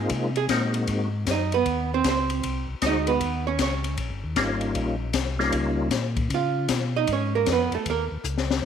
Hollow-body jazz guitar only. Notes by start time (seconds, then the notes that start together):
Already playing: G#4
0.37 G#4
1.31 D#4 D#5
1.54 B3 B4
1.94 C4 C5
2.09 C4 C5
2.86 D#4 D#5
3.08 B3 B4
3.47 C#4 C#5
3.62 C#4 C#5
6.34 F4 F5
6.96 D#4 D#5
7.13 C#4 C#5
7.35 A#3 A#4
7.52 B3 B4
7.75 A3 A4
7.90 A#3 A#4